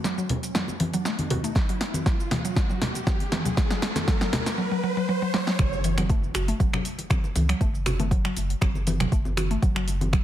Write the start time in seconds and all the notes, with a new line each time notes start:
Already playing: riser
0.04 F#3, snare, muted conga, shaker
0.18 F#3, shaker
0.29 open hi-hat, muted conga, low conga
0.43 open hi-hat, shaker
0.55 F#3, snare, high conga, shaker
0.68 muted conga, shaker
0.80 E3, open hi-hat, high conga
0.93 F#3, closed hi-hat, muted conga, shaker
1.05 A3, snare, shaker
1.19 closed hi-hat, muted conga, high conga, shaker
1.30 F#4, open hi-hat, high conga, low conga
1.44 A3, closed hi-hat, shaker
1.55 F#3, kick, snare, muted conga, shaker
1.69 F#3, closed hi-hat, shaker
1.81 snare, open hi-hat, muted conga
1.94 closed hi-hat, high conga, shaker
2.06 F#3, kick, snare, muted conga, shaker
2.20 shaker
2.31 E3, snare, open hi-hat, muted conga, low conga
2.45 F#3, closed hi-hat, shaker
2.56 F#3, kick, snare, high conga, shaker
2.69 F#3, muted conga, shaker
2.82 snare, open hi-hat, low conga
2.94 closed hi-hat, muted conga, shaker
3.07 F#3, kick, snare, high conga, shaker
3.20 closed hi-hat, muted conga, shaker
3.32 E3, snare, open hi-hat, high conga
3.45 F#3, closed hi-hat, low conga, shaker
3.57 F#3, kick, snare, muted conga, shaker
3.71 F#3, snare, closed hi-hat, shaker
3.82 snare, open hi-hat, muted conga
3.96 snare, closed hi-hat, high conga, shaker
4.08 F#3, kick, snare, muted conga, shaker
4.21 F#3, snare, closed hi-hat, shaker
4.33 snare, open hi-hat, muted conga, low conga
4.46 snare, open hi-hat, shaker
4.58 F#3
4.71 F#3
4.84 F#3
4.97 F#3
5.09 F#3
5.22 F#3
5.34 F#3, snare
5.47 F#3, snare
5.59 F#1 F#3, finger snap, kick, closed hi-hat, impact, muted conga, shaker
5.73 shaker
5.84 E3, open hi-hat, muted conga, shaker
5.98 F#3, finger snap, closed hi-hat, high conga, shaker
6.09 A3, kick, closed hi-hat, muted conga, shaker
6.23 shaker
6.34 F#1 F#4, finger snap, open hi-hat, muted conga, shaker
6.48 A3, closed hi-hat, shaker
6.60 F#1 F#3, kick, closed hi-hat, high conga, shaker
6.73 F#3, finger snap, muted conga, low conga, shaker
6.85 open hi-hat, shaker
6.98 closed hi-hat, muted conga, shaker
7.10 F#3, finger snap, kick, closed hi-hat, high conga, low conga, shaker
7.24 muted conga, shaker
7.35 C#2 E3, open hi-hat, high conga, shaker
7.49 F#3, finger snap, closed hi-hat, shaker
7.61 F#1 A3, kick, closed hi-hat, muted conga, shaker
7.75 shaker
7.86 F#4, finger snap, open hi-hat, muted conga, low conga, shaker
8.00 A3, closed hi-hat, high conga, shaker
8.11 F#3, kick, closed hi-hat, muted conga, shaker
8.25 F#3, finger snap, shaker
8.36 F#1, open hi-hat, muted conga, shaker
8.50 closed hi-hat, shaker
8.61 F#1 F#3, finger snap, kick, closed hi-hat, high conga, shaker
8.75 muted conga, shaker
8.87 E3, open hi-hat, high conga, shaker
9.00 F#3, finger snap, closed hi-hat, muted conga, low conga, shaker
9.12 F#1 A3, kick, closed hi-hat, shaker
9.25 muted conga, high conga, shaker
9.37 F#4, finger snap, open hi-hat, high conga, shaker
9.51 A3, closed hi-hat, shaker
9.62 F#1 F#3, kick, closed hi-hat, muted conga, shaker
9.76 F#3, finger snap, shaker
9.88 open hi-hat, muted conga, shaker
10.01 closed hi-hat, high conga, shaker
10.13 F#3, finger snap, kick, closed hi-hat, muted conga, shaker